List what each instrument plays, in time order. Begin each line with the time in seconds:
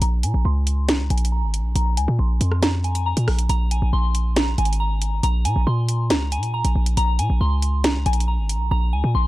0.02 808-style bass A#1, synth bell A#5, closed hi-hat
0.23 808-style bass A#2, synth bell G#5, closed hi-hat
0.34 808-style bass A#1
0.45 808-style bass C#2, synth bell C6
0.67 closed hi-hat
0.89 808-style bass C2, synth bell A#5, snare, closed hi-hat
0.99 808-style bass C#2
1.10 808-style bass A#1, synth bell G#5, closed hi-hat
1.18 closed hi-hat
1.25 closed hi-hat
1.32 synth bell A#5
1.43 808-style bass G#1
1.54 closed hi-hat
1.59 808-style bass A#1
1.75 808-style bass A#1, synth bell A#5, closed hi-hat
1.97 808-style bass C#2, synth bell G#5, closed hi-hat
2.08 808-style bass A#2
2.19 808-style bass A#1, synth bell C6
2.41 808-style bass F2, closed hi-hat
2.52 cross-stick
2.62 synth bell A#5, snare, closed hi-hat
2.84 synth bell G#5, closed hi-hat
2.95 closed hi-hat
3.06 synth bell A#5
3.17 808-style bass A#2, closed hi-hat
3.28 808-style bass A#1, cross-stick, open hi-hat
3.39 closed hi-hat
3.49 808-style bass A#1, synth bell A#5, closed hi-hat
3.71 synth bell G#5, closed hi-hat
3.82 808-style bass A#1
3.93 808-style bass A#1, synth bell C6
4.15 closed hi-hat
4.36 synth bell A#5, snare, closed hi-hat
4.58 808-style bass G#1, synth bell G#5, closed hi-hat
4.65 closed hi-hat
4.73 closed hi-hat
4.80 synth bell A#5
5.02 closed hi-hat
5.23 808-style bass A#1, synth bell A#5, closed hi-hat
5.45 808-style bass A#2, synth bell G#5, closed hi-hat
5.56 808-style bass A#1
5.67 808-style bass A#2, synth bell C6
5.89 closed hi-hat
6.10 808-style bass C#2, synth bell A#5, snare, closed hi-hat
6.32 synth bell G#5, closed hi-hat
6.37 808-style bass A#2
6.43 closed hi-hat
6.54 synth bell A#5
6.65 808-style bass A#1, closed hi-hat
6.76 808-style bass A#1
6.86 closed hi-hat
6.97 808-style bass A#1, synth bell A#5, closed hi-hat
7.19 808-style bass A#2, synth bell G#5, closed hi-hat
7.30 808-style bass A#1
7.41 808-style bass C#2, synth bell C6
7.62 closed hi-hat
7.84 808-style bass C2, synth bell A#5, snare, closed hi-hat
7.95 808-style bass C#2
8.06 808-style bass A#1, synth bell G#5, closed hi-hat
8.13 closed hi-hat
8.20 closed hi-hat
8.28 synth bell A#5
8.39 808-style bass G#1
8.49 closed hi-hat
8.55 808-style bass A#1
8.71 808-style bass A#1, synth bell A#5
8.93 808-style bass C#2, synth bell G#5
9.04 808-style bass A#2
9.15 808-style bass A#1, synth bell C6